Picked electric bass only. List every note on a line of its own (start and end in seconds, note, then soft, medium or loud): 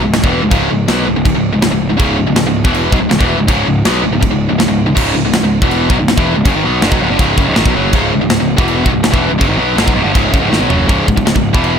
0.08 0.15 C#1 medium
0.16 0.23 C#1 medium
0.24 0.40 E1 loud
0.44 0.51 C#1 medium
0.51 0.68 C#1 loud
0.71 0.87 C#1 medium
0.89 1.06 B1 loud
1.09 1.16 C#1 medium
1.17 1.25 C#1 medium
1.25 1.34 C#1 medium
1.36 1.52 C#1 medium
1.54 1.62 C#1 medium
1.63 1.71 C#1 medium
1.72 1.89 C#1 medium
1.91 1.99 C#1 medium
2.00 2.17 C#1 loud
2.19 2.27 C#1 medium
2.28 2.35 C#1 medium
2.36 2.45 C#1 medium
2.46 2.63 C#1 medium
2.65 2.90 E1 loud
2.93 2.99 B1 loud
3.00 3.09 C#1 medium
3.11 3.19 C#1 medium
3.21 3.37 E1 loud
3.38 3.47 C#1 medium
3.49 3.65 C#1 loud
3.66 3.83 C#1 medium
3.86 4.03 B1 loud
4.04 4.12 C#1 medium
4.13 4.21 C#1 medium
4.23 4.31 C#1 medium
4.31 4.48 C#1 medium
4.51 4.59 C#1 medium
4.61 4.68 C#1 medium
4.69 4.86 C#1 medium
4.88 4.96 C#1 medium
4.97 5.14 C#1 loud
5.15 5.23 C#1 medium
5.25 5.33 C#1 medium
5.34 5.42 C#1 medium
5.43 5.60 C#1 medium
5.62 5.87 E1 loud
5.90 5.98 B1 loud
5.99 6.07 C#1 medium
6.08 6.16 C#1 medium
6.17 6.34 E1 loud
6.36 6.44 C#1 medium
6.45 6.53 F#1 loud
6.55 6.63 G#1 loud
6.64 6.81 B1 medium
6.84 6.91 G1 loud
6.92 7.00 B1 loud
7.03 7.10 C#1 loud
7.11 7.18 G1 loud
7.20 7.36 C#1 loud
7.38 7.46 F#1 loud
7.48 7.56 C#1 loud
7.58 7.65 G#1 loud
7.66 7.74 B1 loud
7.77 7.93 F#1 medium
7.94 8.10 C#1 loud
8.13 8.20 C#1 medium
8.22 8.29 C#1 medium
8.29 8.38 C#1 medium
8.40 8.57 C#1 medium
8.58 8.84 E1 loud
8.86 8.94 B1 loud
8.96 9.03 C#1 medium
9.04 9.12 C#1 medium
9.14 9.31 E1 loud
9.31 9.40 C#1 medium
9.42 9.48 F#1 loud
9.49 9.57 G#1 loud
9.57 9.75 B1 loud
9.77 9.86 G1 loud
9.88 9.96 B1 loud
9.96 10.05 C#1 medium
10.05 10.14 G1 loud
10.15 10.32 C#1 medium
10.34 10.42 F#1 loud
10.43 10.51 C#1 loud
10.52 10.60 G#1 loud
10.62 10.70 B1 loud
10.72 10.88 F#1 loud
10.90 11.07 C#1 loud
11.08 11.16 C#1 medium
11.18 11.26 C#1 medium
11.27 11.35 C#1 medium
11.36 11.53 C#1 medium
11.54 11.79 E1 loud